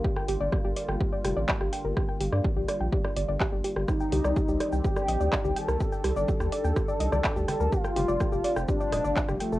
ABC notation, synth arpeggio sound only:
X:1
M:4/4
L:1/16
Q:1/4=125
K:Gm
V:1 name="Synth arpeggio sound"
G g G d G G d g G d G d d G g B | G g G d G G d g G d d d G G G G | G g G d G G d g G d e d d G g B | G g G d G G d g G d e d d G g B |
G g G d G G d g G d e d d G g A |]